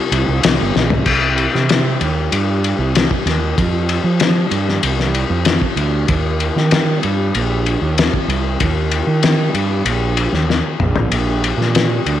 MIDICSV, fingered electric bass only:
0, 0, Header, 1, 2, 480
1, 0, Start_track
1, 0, Tempo, 628272
1, 817, Time_signature, 4, 2, 24, 8
1, 9321, End_track
2, 0, Start_track
2, 0, Title_t, "Fingered electric bass"
2, 0, Program_c, 0, 33
2, 88, Note_on_c, 0, 36, 88
2, 194, Note_off_c, 0, 36, 0
2, 214, Note_on_c, 0, 36, 80
2, 317, Note_off_c, 0, 36, 0
2, 338, Note_on_c, 0, 36, 83
2, 440, Note_off_c, 0, 36, 0
2, 463, Note_on_c, 0, 31, 79
2, 568, Note_off_c, 0, 31, 0
2, 580, Note_on_c, 0, 34, 86
2, 686, Note_off_c, 0, 34, 0
2, 703, Note_on_c, 0, 36, 82
2, 805, Note_off_c, 0, 36, 0
2, 810, Note_on_c, 0, 36, 85
2, 1118, Note_off_c, 0, 36, 0
2, 1184, Note_on_c, 0, 48, 74
2, 1487, Note_off_c, 0, 48, 0
2, 1534, Note_on_c, 0, 39, 72
2, 1739, Note_off_c, 0, 39, 0
2, 1773, Note_on_c, 0, 43, 82
2, 2080, Note_off_c, 0, 43, 0
2, 2127, Note_on_c, 0, 36, 83
2, 2335, Note_off_c, 0, 36, 0
2, 2488, Note_on_c, 0, 39, 82
2, 2696, Note_off_c, 0, 39, 0
2, 2733, Note_on_c, 0, 41, 95
2, 3041, Note_off_c, 0, 41, 0
2, 3086, Note_on_c, 0, 53, 75
2, 3397, Note_off_c, 0, 53, 0
2, 3447, Note_on_c, 0, 43, 73
2, 3655, Note_off_c, 0, 43, 0
2, 3691, Note_on_c, 0, 36, 79
2, 4000, Note_off_c, 0, 36, 0
2, 4048, Note_on_c, 0, 41, 82
2, 4256, Note_off_c, 0, 41, 0
2, 4403, Note_on_c, 0, 38, 82
2, 4614, Note_off_c, 0, 38, 0
2, 4649, Note_on_c, 0, 39, 94
2, 4960, Note_off_c, 0, 39, 0
2, 5012, Note_on_c, 0, 51, 74
2, 5321, Note_off_c, 0, 51, 0
2, 5377, Note_on_c, 0, 43, 77
2, 5582, Note_off_c, 0, 43, 0
2, 5614, Note_on_c, 0, 34, 79
2, 5923, Note_off_c, 0, 34, 0
2, 5970, Note_on_c, 0, 39, 79
2, 6178, Note_off_c, 0, 39, 0
2, 6326, Note_on_c, 0, 36, 81
2, 6536, Note_off_c, 0, 36, 0
2, 6575, Note_on_c, 0, 39, 88
2, 6884, Note_off_c, 0, 39, 0
2, 6927, Note_on_c, 0, 51, 72
2, 7239, Note_off_c, 0, 51, 0
2, 7288, Note_on_c, 0, 43, 72
2, 7498, Note_off_c, 0, 43, 0
2, 7526, Note_on_c, 0, 34, 76
2, 7839, Note_off_c, 0, 34, 0
2, 7889, Note_on_c, 0, 39, 76
2, 8099, Note_off_c, 0, 39, 0
2, 8247, Note_on_c, 0, 34, 80
2, 8457, Note_off_c, 0, 34, 0
2, 8490, Note_on_c, 0, 34, 82
2, 8801, Note_off_c, 0, 34, 0
2, 8842, Note_on_c, 0, 46, 77
2, 9157, Note_off_c, 0, 46, 0
2, 9211, Note_on_c, 0, 38, 75
2, 9321, Note_off_c, 0, 38, 0
2, 9321, End_track
0, 0, End_of_file